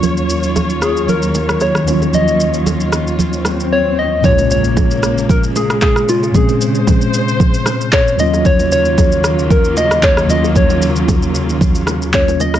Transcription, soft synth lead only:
X:1
M:4/4
L:1/8
Q:"Swing 16ths" 1/4=114
K:Bbm
V:1 name="Soft synth lead"
z3 A B2 d2 | e4 z2 d e | d d3 B A A F | A2 z4 d e |
d d3 B e d e | d2 z4 d e |]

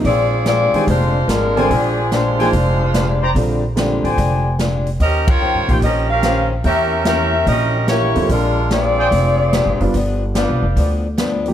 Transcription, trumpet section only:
X:1
M:4/4
L:1/8
Q:"Swing" 1/4=146
K:Bbmix
V:1 name="Trumpet section"
z3 [cdga] z3 [cdga]- | [cdga]2 z [cdga] z3 [cdgb] | z3 [cdga]3 z2 | z3 [c_dfg] z4 |
[B^c=eg]4- [Bceg] z3 | z3 [Acdg] z4 | z2 [G=Bdf]3 z3 |]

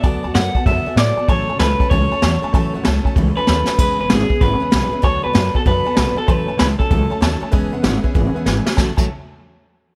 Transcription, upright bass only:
X:1
M:4/4
L:1/8
Q:"Swing" 1/4=192
K:A
V:1 name="Upright bass" clef=bass
D,, D,, F,, z F,, z A,, z | A,,, A,,, C,, z C,, z E,, z | A,,, A,,, C,, z C,, z ^D,, z | E,,, E,,, G,,, z G,,, z B,,, z |
D,, D,, F,, z F,, z B,,, z | A,,, A,,, C,, z C,, z ^D,, z | E,,, E,,, G,,, z G,,, z G,,, z | A,,, A,,, z6 |]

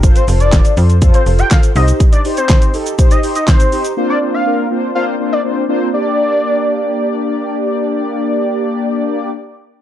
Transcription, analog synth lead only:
X:1
M:4/4
L:1/16
Q:1/4=122
K:Gm
V:1 name="Analog synth lead"
z c z d3 z3 c z g f z e z | z d z c3 z3 e z e c3 z | z d z f3 z2 f z2 d z4 | d12 z4 |
z16 |]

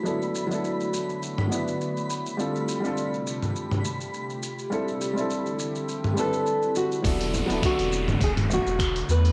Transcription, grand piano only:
X:1
M:4/4
L:1/16
Q:"Swing 16ths" 1/4=103
K:Dlyd
V:1 name="Grand piano"
[F,B,DEA]3 [F,B,DEA]6- [F,B,DEA] [F,B,DEB]6 | [=G,=CD=FA]3 [G,CDFA]8- [G,CDFA]3 z2 | [=G,=CDEA]3 [G,CDEA]6- [G,CDEA] [G,CDEB]6 | [F,B,DEA]3 [F,B,DEA]12- [F,B,DEA] |]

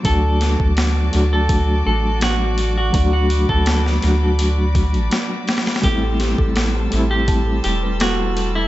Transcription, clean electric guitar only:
X:1
M:4/4
L:1/16
Q:1/4=83
K:Dmix
V:1 name="Clean electric guitar"
A4 z3 A3 A2 F3 F- | F F2 A2 z8 z3 | G4 z3 G3 G2 F3 E |]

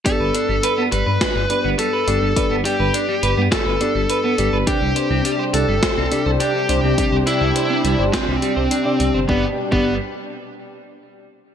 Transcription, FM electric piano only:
X:1
M:4/4
L:1/16
Q:1/4=104
K:G
V:1 name="FM electric piano"
[G,,B,DGd]8- [G,,B,DGd]2 [G,,B,DGd]4 [G,,B,DGd]2 | [G,,B,DGd]8- [G,,B,DGd]2 [G,,B,DGd]4 [B,DGd]2 | [C,CDGd]8- [C,CDGd]2 [C,CDGd]4 [C,CDGd]2 | [C,CDGd]8- [C,CDGd]2 z3 [C,CDGd]3 |
[B,DGd] z2 [B,DGd]2 z8 z3 |]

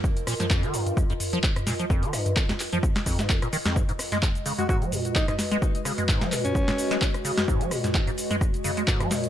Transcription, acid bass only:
X:1
M:4/4
L:1/16
Q:"Swing 16ths" 1/4=129
K:Ablyd
V:1 name="Acid bass" clef=bass
z2 B,, F, F,, E, G,,2 F,, F,, z F, z2 B,, F, | F,, E, G,,2 F,, F,, z F, z2 F,, A,, F,, B,, E, F,, | A,, A,, z A, z2 _D, A, A,, _G, B,,2 A,, A,, z A, | z2 _D, A, A,, _G, B,,2 A,, A,, z A, z2 D, A, |
A,, _G, B,,2 A,, A,, z A, z2 _D, A, A,, G, B,,2 |]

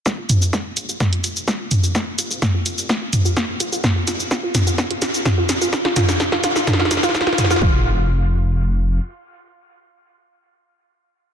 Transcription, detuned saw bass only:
X:1
M:4/4
L:1/16
Q:1/4=127
K:Eb
V:1 name="Detuned saw bass" clef=bass
B,,, z F,, B,,, B,,, z B,,, B,,, B,,, z B,,, B,,, B,,, z B,,, B,,, | C,, z G,,, C,, C,, z C,, C,, C,, z C,, C,, C,, z C,, C,, | z2 C,, F,,, F,,, z F,,, F,,, F,,, z F,,, F,,, z2 F,,, F,,, | E,,, z B,,, E,,, E,,, z E,,, E,,, z2 E,, E,,, E,,, z2 E,, |
F,,,12 z4 | z16 |]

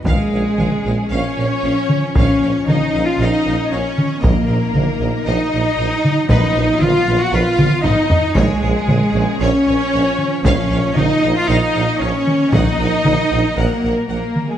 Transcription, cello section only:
X:1
M:4/4
L:1/16
Q:1/4=116
K:Dbmix
V:1 name="Cello section"
A,8 D8 | D4 E3 F E4 D4 | B,8 E8 | ^D4 F3 ^F =F4 D4 |
A,8 D8 | D4 E3 F E4 D4 | E8 B,4 B,3 A, |]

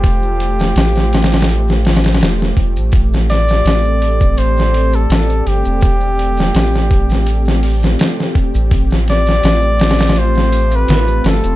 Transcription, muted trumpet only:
X:1
M:4/4
L:1/16
Q:"Swing 16ths" 1/4=83
K:Am
V:1 name="Muted trumpet"
G12- G2 z2 | z2 d6 c3 A3 G2- | G12- G2 z2 | z2 d6 c3 B3 A2 |]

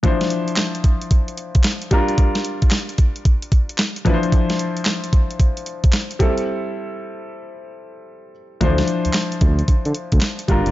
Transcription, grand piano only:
X:1
M:4/4
L:1/8
Q:"Swing 16ths" 1/4=112
K:Dm
V:1 name="Grand piano"
[F,DEc]6- [F,DEc] [G,DFB]- | [G,DFB]6- [G,DFB] [F,DE=Bc]- | [F,DE=Bc]6- [F,DEBc] [G,CEA]- | [G,CEA]6- [G,CEA] z |
[F,DEc]6- [F,DEc] [G,DFB] |]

